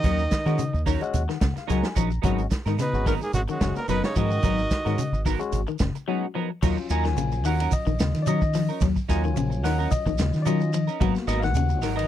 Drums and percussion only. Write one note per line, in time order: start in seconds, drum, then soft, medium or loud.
0.03 kick loud
0.03 snare soft
0.03 closed hi-hat medium
0.03 shekere medium
0.19 shekere soft
0.31 kick medium
0.31 snare medium
0.31 closed hi-hat medium
0.31 shekere medium
0.46 snare soft
0.46 closed hi-hat soft
0.46 shekere soft
0.58 closed hi-hat medium
0.58 shekere medium
0.75 shekere soft
0.86 kick medium
0.86 open hi-hat medium
0.86 shekere medium
1.01 closed hi-hat soft
1.01 shekere soft
1.13 closed hi-hat medium
1.13 shekere loud
1.29 snare soft
1.29 shekere soft
1.41 kick medium
1.41 snare medium
1.41 closed hi-hat medium
1.41 shekere medium
1.56 snare soft
1.56 closed hi-hat soft
1.56 shekere soft
1.69 snare soft
1.69 closed hi-hat medium
1.69 shekere loud
1.83 snare medium
1.83 shekere soft
1.96 kick medium
1.96 closed hi-hat medium
1.96 shekere medium
2.11 shekere soft
2.23 kick medium
2.23 closed hi-hat medium
2.23 shekere medium
2.38 closed hi-hat soft
2.38 shekere soft
2.51 kick medium
2.51 snare medium
2.51 closed hi-hat medium
2.51 shekere medium
2.66 snare soft
2.66 closed hi-hat soft
2.66 shekere soft
2.79 snare soft
2.79 closed hi-hat medium
2.79 shekere medium
2.94 shekere soft
3.06 kick medium
3.06 open hi-hat medium
3.06 shekere medium
3.22 shekere soft
3.33 closed hi-hat medium
3.33 shekere medium
3.48 closed hi-hat soft
3.48 shekere soft
3.61 kick medium
3.61 snare medium
3.61 closed hi-hat medium
3.61 shekere medium
3.76 snare soft
3.76 closed hi-hat soft
3.76 shekere soft
3.88 snare soft
3.88 closed hi-hat medium
3.88 shekere medium
4.04 snare medium
4.04 shekere soft
4.16 kick medium
4.16 closed hi-hat soft
4.16 shekere medium
4.31 shekere soft
4.43 kick medium
4.43 closed hi-hat medium
4.43 shekere medium
4.58 shekere soft
4.71 kick medium
4.71 snare medium
4.71 closed hi-hat medium
4.71 shekere medium
4.86 snare soft
4.86 closed hi-hat soft
4.86 shekere soft
4.98 closed hi-hat medium
4.98 shekere medium
5.14 shekere soft
5.25 kick medium
5.25 open hi-hat medium
5.25 shekere medium
5.40 closed hi-hat soft
5.40 shekere soft
5.52 closed hi-hat medium
5.52 shekere medium
5.67 shekere soft
5.79 kick medium
5.79 snare medium
5.79 closed hi-hat medium
5.79 shekere medium
5.95 closed hi-hat soft
5.95 shekere soft
6.62 kick medium
6.62 crash medium
6.62 shekere medium
6.77 shekere soft
6.90 ride bell medium
6.90 shekere medium
7.04 snare soft
7.04 shekere soft
7.17 ride bell medium
7.17 shekere medium
7.32 shekere soft
7.45 open hi-hat medium
7.45 shekere medium
7.59 ride bell medium
7.59 shekere soft
7.71 kick medium
7.71 ride bell medium
7.71 shekere loud
7.87 shekere soft
7.99 snare medium
7.99 ride bell medium
7.99 shekere medium
8.14 snare soft
8.14 ride bell medium
8.14 shekere soft
8.27 ride bell medium
8.27 shekere loud
8.42 kick medium
8.42 shekere soft
8.54 snare soft
8.54 open hi-hat medium
8.54 shekere medium
8.69 shekere soft
8.81 kick loud
8.81 snare soft
8.81 ride bell medium
8.81 shekere medium
8.96 kick medium
8.96 shekere soft
9.09 kick medium
9.09 snare soft
9.09 ride bell medium
9.09 shekere medium
9.24 shekere soft
9.36 ride bell medium
9.36 shekere medium
9.52 shekere soft
9.65 snare soft
9.65 open hi-hat medium
9.65 shekere medium
9.79 shekere soft
9.91 kick medium
9.91 ride bell medium
9.91 shekere loud
10.06 kick medium
10.06 shekere soft
10.18 snare medium
10.18 ride bell medium
10.18 shekere medium
10.33 snare soft
10.33 shekere soft
10.46 ride bell medium
10.46 shekere medium
10.61 shekere soft
10.73 ride bell medium
10.73 shekere medium
10.88 shekere soft
11.01 kick loud
11.01 ride bell medium
11.01 shekere medium
11.15 snare soft
11.15 shekere soft
11.28 snare soft
11.28 ride bell soft
11.28 shekere medium
11.43 snare soft
11.43 shekere soft
11.55 ride bell medium
11.55 shekere medium
11.69 shekere soft
11.82 snare soft
11.82 open hi-hat medium
11.82 shekere medium
11.98 ride bell medium
11.98 shekere soft